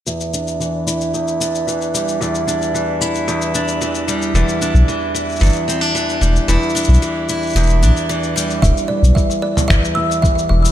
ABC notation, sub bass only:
X:1
M:4/4
L:1/16
Q:1/4=112
K:Em
V:1 name="Sub bass" clef=bass
z16 | z16 | E,,, z2 B,,, z4 G,,, z4 z E,,, z | E,,, z2 B,,, z4 E,,,2 B,,, z4 z |
E,,, z2 B,,, z4 G,,, z4 z E,,, z |]